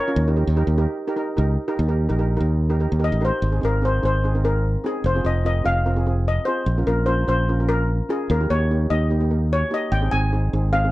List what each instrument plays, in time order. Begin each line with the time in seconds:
Already playing: steel pan A#4 C#5
0.08 steel pan C#4 F4 A#4
0.16 fingered electric bass D#2
0.28 steel pan D#4 G4 A#4
0.36 steel pan D#4 G4 A#4
0.47 fingered electric bass D#2
0.56 steel pan D#4 G4 A#4
0.67 fingered electric bass D#2
0.78 steel pan D#4 G4 A#4
1.07 steel pan D#4 G4 A#4
1.16 steel pan D#4 G4 A#4
1.37 fingered electric bass C#2, steel pan D#4 G4 A#4
1.68 steel pan D#4 G4 A#4
1.79 fingered electric bass D#2
1.88 steel pan D#4 G4 A#4
2.09 fingered electric bass A#1, steel pan D#4 G4 A#4
2.18 steel pan D#4 G4 A#4
2.37 fingered electric bass D#2, steel pan D#4 G4 A#4
2.70 steel pan D#4 G4 A#4
2.80 steel pan D#4 G4 A#4
2.92 fingered electric bass D#2
2.99 steel pan D#4 G4 A#4
3.04 steel pan D#5
3.12 fingered electric bass A1
3.21 steel pan D#4 G4 A#4 C5
3.42 fingered electric bass G#1
3.52 steel pan C4 D#4 G#4
3.61 fingered electric bass G#1, steel pan C4 D#4 G#4 A#4
3.82 steel pan C4 D#4 G#4 C5
4.02 fingered electric bass G#1, steel pan C4 D#4 G#4 C5
4.24 steel pan C4 D#4 G#4
4.35 steel pan C4 D#4 A#4
4.44 steel pan C4 D#4 G#4 A#4
4.84 steel pan C4 D#4 G#4
5.04 fingered electric bass F1, steel pan C5
5.15 steel pan C4 F4 G#4
5.24 fingered electric bass F1, steel pan C4 F4 G#4 D#5
5.45 steel pan C4 F4 A#4 D#5
5.64 fingered electric bass F1, steel pan C4 F4 G#4 F5
5.86 steel pan C4 F4 A#4
5.96 steel pan C4 F4 G#4
6.06 steel pan C4 F4 G#4
6.28 steel pan D#5
6.45 steel pan C4 F4 G#4 C5
6.66 fingered electric bass A#1
6.78 steel pan C#4 F4 A#4
6.87 fingered electric bass A#1, steel pan C#4 F4 A#4
7.06 steel pan C#4 F4 A#4 C5
7.27 fingered electric bass A#1, steel pan C#4 F4 A#4 C5
7.49 steel pan C#4 F4 A#4
7.60 steel pan C#4 F4 A#4
7.69 steel pan C#4 F4 A#4
8.09 steel pan C#4 F4 G#4 A#4
8.30 fingered electric bass D#2, steel pan A#4
8.41 steel pan A#3 D#4 G4
8.50 fingered electric bass D#2, steel pan A#3 D#4 G4 C#5
8.71 steel pan A#3 D#4 G4
8.90 fingered electric bass D#2, steel pan A#3 D#4 G4 D#5
9.10 steel pan A#3 D#4 G4
9.20 steel pan A#3 D#4 G4
9.31 steel pan A#3 D#4 A#4
9.53 steel pan C#5
9.71 steel pan A#3 D#4 G4 D#5
9.92 fingered electric bass G#1, steel pan G5
10.02 steel pan C4 D#4 G#4
10.11 fingered electric bass G#1, steel pan C4 D#4 G#4 G#5
10.33 steel pan C4 D#4 G#4
10.53 fingered electric bass G#1, steel pan C4 D#4 G#4
10.73 steel pan C4 D#4 G#4 F5
10.84 steel pan C4 D#4 G#4